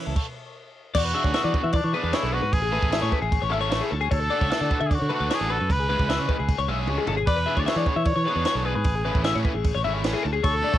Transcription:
Already playing: clean electric guitar E3 C#4
0.07 fingered electric bass C#2, clean electric guitar A4
0.16 kick, crash
0.95 fingered electric bass E2, trumpet F#4, clean electric guitar D5, kick, crash
1.05 clean electric guitar B4
1.14 overdriven electric guitar E3 B3 D4 G#4, clean electric guitar E5
1.24 fingered electric bass D2, clean electric guitar C#5, kick
1.33 overdriven electric guitar E3 B3 D4 G#4, clean electric guitar E5, snare, crash
1.44 fingered electric bass E3, clean electric guitar D5
1.54 clean electric guitar B4, kick
1.64 fingered electric bass E3, clean electric guitar E5
1.73 trumpet D4, clean electric guitar D5, kick, crash
1.84 fingered electric bass E3, clean electric guitar C#5
1.94 overdriven electric guitar E3 B3 D4 G#4, trumpet D4, clean electric guitar B4
2.04 fingered electric bass E2, clean electric guitar B4
2.13 overdriven electric guitar E3 B3 D4 G#4, trumpet E4, clean electric guitar C#5, snare, crash
2.23 fingered electric bass B1, clean electric guitar A4
2.33 trumpet F#4, clean electric guitar B4
2.42 fingered electric bass G#2, clean electric guitar B4
2.53 fingered electric bass A1, trumpet G#4, kick, crash
2.62 clean electric guitar G#4
2.72 overdriven electric guitar A3 C#4 E4 A4, clean electric guitar B4
2.83 fingered electric bass A1, kick
2.91 overdriven electric guitar A3 C#4 E4 A4, clean electric guitar E5, snare, crash
3.02 fingered electric bass A2, clean electric guitar C#5
3.12 clean electric guitar B4, kick
3.22 fingered electric bass A1, clean electric guitar G#4
3.32 kick, crash
3.42 fingered electric bass A1, clean electric guitar C#5
3.50 fingered electric bass G#1, overdriven electric guitar A3 C#4 E4 A4, clean electric guitar E5
3.61 clean electric guitar C#5
3.70 fingered electric bass A1, overdriven electric guitar A3 C#4 E4 A4, snare, crash
3.81 clean electric guitar G#4
3.91 fingered electric bass D2, clean electric guitar A4
4.01 clean electric guitar G#4
4.11 fingered electric bass D2, trumpet A4, clean electric guitar C#5, kick, crash
4.20 clean electric guitar A4
4.30 overdriven electric guitar A3 D4 F#4 A4, clean electric guitar D5
4.41 fingered electric bass C#2, clean electric guitar C#5, kick
4.50 overdriven electric guitar A3 D4 F#4 A4, clean electric guitar E5, snare, crash
4.61 fingered electric bass D3, clean electric guitar D5
4.70 clean electric guitar B4, kick
4.80 fingered electric bass D3, clean electric guitar E5
4.86 trumpet G#4, clean electric guitar D5
4.91 trumpet F#4, kick, crash
5.00 fingered electric bass D3, clean electric guitar C#5
5.09 overdriven electric guitar A3 D4 F#4 A4, clean electric guitar B4
5.14 trumpet F#4
5.20 fingered electric bass D2, clean electric guitar B4
5.30 overdriven electric guitar A3 D4 F#4 A4, clean electric guitar C#5, snare, crash
5.34 trumpet G#4
5.40 fingered electric bass A1, clean electric guitar A4
5.50 trumpet A4, clean electric guitar B4
5.60 fingered electric bass F#2, clean electric guitar B4
5.70 fingered electric bass C#2, trumpet B4, kick, crash
5.80 clean electric guitar G#4
5.89 overdriven electric guitar E3 G#3 C#4 G#4, clean electric guitar B4
5.99 fingered electric bass C#2, kick
6.09 overdriven electric guitar E3 G#3 C#4 G#4, clean electric guitar E5, snare, crash
6.19 fingered electric bass C#3, clean electric guitar C#5
6.29 clean electric guitar B4, kick
6.39 fingered electric bass C#2, clean electric guitar G#4
6.49 kick, crash
6.59 fingered electric bass C#2, clean electric guitar C#5
6.68 fingered electric bass B1, overdriven electric guitar E3 G#3 C#4 G#4, clean electric guitar E5
6.79 clean electric guitar C#5
6.87 fingered electric bass C#2, overdriven electric guitar E3 G#3 C#4 G#4, high tom
6.98 clean electric guitar G#4
7.07 fingered electric bass G#1, clean electric guitar A4, floor tom
7.17 clean electric guitar G#4
7.27 fingered electric bass E2, trumpet B4, clean electric guitar D5, kick, crash
7.36 clean electric guitar B4
7.46 overdriven electric guitar E3 B3 D4 G#4, clean electric guitar E5
7.57 fingered electric bass D2, clean electric guitar C#5, trumpet D5, kick
7.66 overdriven electric guitar E3 B3 D4 G#4, trumpet C#5, clean electric guitar E5, snare, crash
7.76 fingered electric bass E3, clean electric guitar D5
7.86 clean electric guitar B4, kick
7.96 fingered electric bass E3, clean electric guitar E5
8.05 trumpet C#5, clean electric guitar D5, kick, crash
8.16 fingered electric bass E3, clean electric guitar C#5
8.25 overdriven electric guitar E3 B3 D4 G#4, clean electric guitar B4
8.35 fingered electric bass E2, clean electric guitar B4
8.45 overdriven electric guitar E3 B3 D4 G#4, clean electric guitar C#5, snare, crash
8.55 fingered electric bass B1, clean electric guitar A4
8.65 trumpet G#4, clean electric guitar B4
8.75 fingered electric bass G#2, clean electric guitar B4
8.84 fingered electric bass A1, kick, crash
8.95 clean electric guitar G#4
9.05 overdriven electric guitar E3 A3 C#4 E4, clean electric guitar B4
9.15 fingered electric bass A1, kick
9.24 overdriven electric guitar E3 A3 C#4 E4, clean electric guitar E5, snare, crash
9.35 fingered electric bass A2, clean electric guitar C#5
9.45 clean electric guitar B4, kick
9.55 fingered electric bass A1, clean electric guitar G#4
9.64 kick, crash
9.75 fingered electric bass A1, clean electric guitar C#5
9.84 fingered electric bass G#1, overdriven electric guitar E3 A3 C#4 E4, clean electric guitar E5
9.94 clean electric guitar C#5
10.04 fingered electric bass A1, overdriven electric guitar E3 A3 C#4 E4, snare, crash
10.13 clean electric guitar G#4
10.23 fingered electric bass D2, clean electric guitar A4
10.33 clean electric guitar G#4
10.44 fingered electric bass D2, trumpet A4, clean electric guitar C#5, kick, crash
10.54 clean electric guitar A4
10.63 overdriven electric guitar D3 F#3 A3 D4, clean electric guitar D5
10.73 fingered electric bass C#2, clean electric guitar C#5, kick

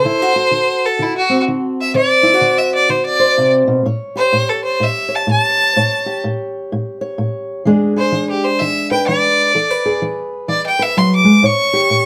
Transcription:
Already playing: steel-string acoustic guitar A4, fiddle C5
0.05 steel-string acoustic guitar D3 E4
0.22 steel-string acoustic guitar F#4
0.36 steel-string acoustic guitar F#4
0.51 steel-string acoustic guitar D3
0.86 fiddle A4
0.99 steel-string acoustic guitar D3, fiddle E4
1.17 fiddle F#4
1.29 steel-string acoustic guitar C4
1.48 steel-string acoustic guitar D3
1.81 fiddle E5
1.94 steel-string acoustic guitar D3 C5, fiddle D5
2.23 steel-string acoustic guitar E4
2.34 steel-string acoustic guitar F#4
2.41 steel-string acoustic guitar D3
2.59 fiddle E5
2.75 fiddle D5
2.89 steel-string acoustic guitar D3, fiddle C5
3.06 fiddle D5
3.20 steel-string acoustic guitar C5
3.38 steel-string acoustic guitar C3
3.67 steel-string acoustic guitar B2
3.85 steel-string acoustic guitar A2 C#5
4.16 steel-string acoustic guitar G4, fiddle C5
4.33 steel-string acoustic guitar A2
4.49 fiddle A4
4.64 fiddle C5
4.80 steel-string acoustic guitar A2, fiddle E5
5.09 steel-string acoustic guitar C#5
5.15 fiddle A5
5.27 steel-string acoustic guitar A2, fiddle A5
5.76 steel-string acoustic guitar A2 C#5
6.06 steel-string acoustic guitar G4
6.24 steel-string acoustic guitar A2
6.72 steel-string acoustic guitar A2
7.01 steel-string acoustic guitar C#5
7.18 steel-string acoustic guitar A2
7.65 steel-string acoustic guitar E3 G#3 D4 G#4
7.96 steel-string acoustic guitar G#4, fiddle C5
8.12 steel-string acoustic guitar E3
8.30 fiddle G4
8.44 fiddle C5
8.59 steel-string acoustic guitar E3, fiddle E5
8.91 steel-string acoustic guitar B4, fiddle G5
9.07 steel-string acoustic guitar E3, fiddle D5
9.55 steel-string acoustic guitar E3 A4
9.71 steel-string acoustic guitar B4
9.86 steel-string acoustic guitar G#4
10.02 steel-string acoustic guitar E3
10.48 steel-string acoustic guitar E3, fiddle D5
10.66 fiddle G5
10.79 steel-string acoustic guitar B4, fiddle E5
10.97 steel-string acoustic guitar F#3, fiddle C6
11.16 fiddle D6
11.24 steel-string acoustic guitar G#3
11.43 steel-string acoustic guitar A2 C#5, fiddle C#6
11.73 steel-string acoustic guitar G4
11.90 steel-string acoustic guitar A2

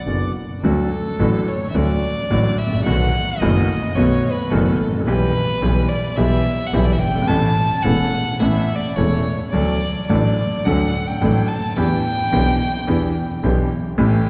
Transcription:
Already playing: bandoneon D5, violin F#5
0.06 grand piano F#1 F#2 D3 F#3 B3 F#4, double bass F#1
0.63 double bass D2, grand piano D2 D3 F#3 A3 F#4, violin A4
1.19 double bass A1, grand piano A1 A2 D3 F#3 A3 F#4
1.47 violin C#5
1.70 violin E5
1.74 double bass D2, grand piano D2 D3 F#3 A3 F#4, violin D5
2.30 grand piano A1 A2 D3 F#3 A3 F#4, double bass A1
2.58 double bass A1, violin E5
2.67 grand piano G#1
2.73 grand piano A1
2.80 grand piano A#1
2.85 double bass B1, grand piano B1 B2 D#3 A3 B3 F#4, violin F#5
3.39 double bass F#1, grand piano F#1 F#2 D#3 A3 B3 F#4, violin D#5
3.95 double bass B1, grand piano B1 B2 D#3 A3 B3 F#4, violin C#5
4.31 violin B4
4.50 double bass F#1, grand piano F#1 F#2 D#3 A3 B3 F#4, violin A4
4.79 double bass A1
4.87 grand piano G#1
4.94 grand piano A1
5.00 grand piano A#1
5.06 double bass B1, grand piano B1 B2 E3 G3 B3 G4, violin B4
5.62 double bass B1, grand piano B1 B2 E3 G3 B3 G4
5.89 violin D5
6.16 grand piano B1 B2 E3 G3 B3 G4, double bass B1, violin E5
6.66 violin F#5
6.73 double bass B1, grand piano B1 B2 E3 G3 B3 G4, violin E5
6.84 violin D5
6.92 violin E5
6.99 double bass G1, violin G5
7.08 grand piano F#1
7.15 grand piano G1
7.22 grand piano G#1
7.27 grand piano A1 A2 E3 A3 C#4 A4, double bass A1, violin A5
7.82 grand piano E1 E2 E3 A3 C#4 A4, double bass E1, violin F#5
8.39 grand piano A1 A2 E3 A3 C#4 A4, double bass A1, violin E5
8.75 violin D5
8.96 grand piano E1 E2 E3 A3 C#4 A4, double bass E1, violin C#5
9.51 grand piano D2 D3 F#3 A3 D4 A4, double bass D2, violin D5
10.07 grand piano A1 A2 F#3 A3 D4 A4, double bass A1, violin D5
10.64 grand piano D2 D3 F#3 A3 D4 A4, double bass D2, violin F#5
11.07 violin G5
11.21 grand piano A1 A2 F#3 A3 D4 A4, double bass A1
11.48 violin A5
11.77 grand piano E2 E3 B3 D4 G4, double bass E2, violin G5
12.32 grand piano B1 B2 E3 B3 D4 G4, double bass B1
12.87 grand piano E2 E3 B3 D4 G4, double bass E2
13.43 double bass B1, grand piano B1 B2 E3 B3 D4 G4
13.98 grand piano A1 A2 E3 A3 C#4 G4, double bass A1, violin G4

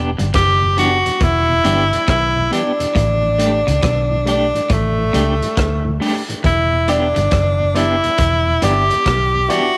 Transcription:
Already playing: fingered electric bass E1
0.18 fingered electric bass G1, tonewheel organ E2 B2, clean electric guitar G2, closed hi-hat
0.34 fingered electric bass F#1, clean electric guitar F#2, tenor saxophone G4, kick, cross-stick, closed hi-hat
0.61 tonewheel organ E2 B2
0.77 tonewheel organ E3 G3 D4, clean electric guitar B3 D4 G4, tenor saxophone F#4, closed hi-hat
1.05 tonewheel organ E2 B2, closed hi-hat
1.21 fingered electric bass E1, clean electric guitar E2, tenor saxophone E4, kick, closed hi-hat
1.49 tonewheel organ E2 B2
1.64 fingered electric bass G1, clean electric guitar G2 B3 D4 G4, tonewheel organ E3 G3 D4, closed hi-hat
1.93 tonewheel organ E2 B2, closed hi-hat
2.08 fingered electric bass B1, clean electric guitar B2, tenor saxophone E4, kick, cross-stick, closed hi-hat
2.36 tonewheel organ E2 B2
2.51 tonewheel organ E3 G3 D4, clean electric guitar B3 D4 G4, tenor saxophone D4, closed hi-hat
2.80 tonewheel organ E2 B2, closed hi-hat
2.95 fingered electric bass A1, clean electric guitar A2, kick, closed hi-hat
3.23 tonewheel organ A2 E3
3.38 tonewheel organ G3 A3 D4, clean electric guitar A3 D4 G4, closed hi-hat
3.67 fingered electric bass C#2, tonewheel organ A2 E3, clean electric guitar C#3, closed hi-hat
3.83 fingered electric bass B1, clean electric guitar B2, kick, cross-stick, closed hi-hat
4.10 tonewheel organ A2 E3
4.25 tonewheel organ G3 A3 D4, clean electric guitar A3 D4 G4, tenor saxophone D4, closed hi-hat
4.54 tonewheel organ A2 E3, closed hi-hat
4.70 fingered electric bass A1, clean electric guitar A2, tenor saxophone A3, kick, closed hi-hat
4.98 tonewheel organ A2 E3
5.13 fingered electric bass C#2, clean electric guitar C#3 A3 D4 G4, tonewheel organ G3 A3 D4, closed hi-hat
5.41 tonewheel organ A2 E3, closed hi-hat
5.57 fingered electric bass D2, clean electric guitar D3, kick, cross-stick, closed hi-hat
5.85 tonewheel organ A2 E3
6.00 tonewheel organ G3 A3 D4, clean electric guitar A3 D4 G4, open hi-hat
6.28 tonewheel organ A2 E3, muted clean electric guitar stroke, closed hi-hat
6.44 fingered electric bass E1, clean electric guitar E2, tenor saxophone E4, kick, closed hi-hat
6.72 tonewheel organ E2 B2
6.88 tonewheel organ E3 G3 D4, clean electric guitar B3 D4 G4, tenor saxophone D4, upright piano E4 G4 D5, closed hi-hat
7.16 fingered electric bass G1, tonewheel organ E2 B2, clean electric guitar G2, closed hi-hat
7.31 fingered electric bass F#1, clean electric guitar F#2, kick, cross-stick, closed hi-hat
7.59 tonewheel organ E2 B2
7.74 tonewheel organ E3 G3 D4, clean electric guitar B3 D4 G4, upright piano E4 G4 D5, tenor saxophone E4, closed hi-hat
8.04 tonewheel organ E2 B2, closed hi-hat
8.18 fingered electric bass E1, clean electric guitar E2, kick, closed hi-hat
8.46 tonewheel organ E2 B2
8.62 fingered electric bass G1, clean electric guitar G2 B3 D4 G4, tonewheel organ E3 G3 D4, upright piano E4 G4 D5, tenor saxophone G4, closed hi-hat
8.90 tonewheel organ E2 B2, closed hi-hat
9.06 fingered electric bass B1, clean electric guitar B2, kick, cross-stick, closed hi-hat
9.35 tonewheel organ E2 B2
9.48 tonewheel organ E3 G3 D4, clean electric guitar B3 D4 G4, upright piano E4 G4 D5, tenor saxophone F#4, closed hi-hat

